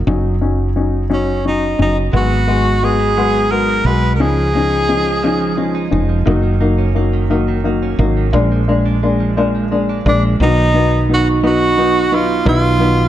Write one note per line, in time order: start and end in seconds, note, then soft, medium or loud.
0.07 1.75 F#1 loud
0.07 0.33 F#3 medium
0.07 0.33 C#4 medium
0.07 0.33 D#4 medium
0.41 0.67 F#3 medium
0.41 0.68 C#4 medium
0.41 0.68 D#4 medium
0.76 1.02 F#3 medium
0.76 1.02 C#4 medium
0.76 1.02 D#4 medium
1.10 1.36 F#3 medium
1.10 1.36 C#4 medium
1.10 1.44 C#4 medium
1.10 1.37 D#4 medium
1.45 1.71 F#3 medium
1.45 1.71 C#4 medium
1.45 1.71 D#4 medium
1.45 1.78 D#4 medium
1.79 2.12 F#1 medium
1.79 2.05 F#3 medium
1.79 2.05 C#4 medium
1.79 2.05 D#4 medium
1.79 1.97 D#4 medium
2.13 3.82 G#1 medium
2.13 3.15 F#3 medium
2.13 2.39 G#3 medium
2.13 2.40 B3 medium
2.13 2.40 F#4 medium
2.13 2.86 F#4 medium
2.31 2.98 B3 soft
2.47 2.74 G#3 medium
2.47 2.74 B3 medium
2.47 2.82 D#4 medium
2.47 2.74 F#4 medium
2.65 3.68 F#4 medium
2.83 3.09 G#3 medium
2.83 3.09 B3 medium
2.83 3.51 D#4 soft
2.83 3.09 F#4 medium
2.83 3.53 G#4 medium
2.99 3.33 B3 medium
3.17 4.20 F#3 medium
3.17 3.43 G#3 medium
3.17 3.43 B3 medium
3.17 3.44 F#4 medium
3.34 4.02 B3 medium
3.51 3.77 G#3 medium
3.51 3.77 B3 medium
3.51 3.85 D#4 medium
3.51 3.78 F#4 medium
3.51 3.87 A#4 medium
3.69 4.27 F#4 medium
3.85 4.19 B1 medium
3.85 4.12 G#3 medium
3.85 4.12 B3 medium
3.85 4.40 D#4 soft
3.85 4.12 F#4 medium
3.85 4.13 B4 medium
4.03 4.27 B3 soft
4.15 4.23 A#4 medium
4.19 5.88 C#2 medium
4.19 4.36 F3 medium
4.19 4.46 F3 medium
4.19 4.46 C#4 medium
4.19 4.47 D#4 medium
4.19 5.93 G#4 medium
4.37 5.04 F3 soft
4.54 4.81 F3 medium
4.54 4.86 G#3 medium
4.54 4.81 C#4 medium
4.54 4.81 D#4 medium
4.71 5.74 D#4 medium
4.88 5.15 F3 medium
4.88 5.56 G#3 medium
4.88 5.15 C#4 medium
4.88 5.15 D#4 medium
5.05 5.21 F3 soft
5.23 5.39 F3 medium
5.23 5.50 F3 medium
5.23 5.50 C#4 medium
5.23 5.50 D#4 medium
5.40 6.08 F3 medium
5.57 5.84 F3 medium
5.57 5.91 G#3 medium
5.57 5.84 C#4 medium
5.57 5.84 D#4 medium
5.75 6.78 D#4 medium
5.91 6.25 F1 medium
5.91 6.18 F3 medium
5.91 6.34 G#3 soft
5.91 6.18 C#4 medium
5.91 6.18 D#4 medium
6.09 6.25 F3 medium
6.26 7.95 F#1 loud
6.26 6.42 D#3 medium
6.26 6.52 F#3 medium
6.26 6.53 A#3 medium
6.26 6.53 D#4 medium
6.43 7.12 D#3 medium
6.61 6.87 F#3 medium
6.61 6.96 A#3 medium
6.61 6.87 A#3 medium
6.61 6.87 D#4 medium
6.78 7.81 C#4 medium
6.95 7.22 F#3 medium
6.95 7.21 A#3 medium
6.95 7.65 A#3 medium
6.95 7.22 D#4 medium
7.14 7.30 D#3 medium
7.30 7.47 D#3 medium
7.30 7.56 F#3 medium
7.30 7.56 A#3 medium
7.30 7.57 D#4 medium
7.48 8.16 D#3 medium
7.64 7.90 F#3 medium
7.64 7.91 A#3 medium
7.64 7.99 A#3 medium
7.64 7.91 D#4 medium
7.83 8.41 C#4 medium
7.99 8.31 G#1 medium
7.99 8.25 F#3 medium
7.99 8.25 A#3 medium
7.99 8.69 A#3 medium
7.99 8.25 D#4 medium
8.17 8.34 D#3 soft
8.33 10.02 A#1 loud
8.33 8.51 F3 medium
8.33 8.59 G#3 medium
8.33 8.59 A#3 medium
8.33 8.59 D4 medium
8.52 9.19 F3 medium
8.68 8.94 G#3 medium
8.68 9.02 G#3 medium
8.68 8.94 A#3 medium
8.68 8.94 D4 medium
8.85 9.88 D4 medium
9.03 9.29 G#3 medium
9.03 9.71 G#3 medium
9.03 9.29 A#3 medium
9.03 9.29 D4 medium
9.20 9.37 F3 medium
9.37 9.54 F3 medium
9.37 9.63 G#3 medium
9.37 9.63 A#3 medium
9.37 9.63 D4 medium
9.55 10.22 F3 medium
9.71 9.97 G#3 medium
9.71 10.05 G#3 medium
9.71 9.98 A#3 medium
9.71 9.97 D4 medium
9.89 10.48 D4 medium
10.06 10.38 A#1 loud
10.06 10.32 G#3 medium
10.06 10.47 G#3 medium
10.06 10.32 A#3 medium
10.06 10.32 D4 medium
10.06 10.23 D4 medium
10.23 10.41 F3 soft
10.40 12.43 B1 loud
10.40 12.45 D#3 medium
10.40 10.67 F#3 medium
10.40 10.67 B3 medium
10.40 13.08 D#4 medium
10.40 10.67 D#4 medium
10.40 11.07 D#4 medium
10.74 11.00 F#3 medium
10.74 11.42 B3 medium
10.74 11.01 B3 medium
10.74 11.01 D#4 medium
11.09 11.35 F#3 medium
11.09 11.35 B3 medium
11.09 11.36 D#4 medium
11.14 11.28 F#4 medium
11.43 11.69 F#3 medium
11.43 11.69 B3 medium
11.43 12.11 B3 medium
11.43 11.70 D#4 medium
11.43 12.16 F#4 medium
11.78 12.04 F#3 medium
11.78 12.04 B3 medium
11.78 12.04 D#4 medium
11.78 13.08 D#4 medium
12.12 12.38 F#3 medium
12.12 12.38 B3 medium
12.12 12.80 B3 medium
12.12 12.38 D#4 medium
12.12 12.48 F4 medium
12.45 13.08 B1 loud
12.45 13.08 D#3 medium
12.45 12.72 F#3 medium
12.45 12.72 B3 medium
12.45 12.72 D#4 medium
12.45 13.08 F4 loud
12.79 13.06 F#3 medium
12.79 13.07 B3 medium
12.79 13.08 B3 medium
12.79 13.07 D#4 medium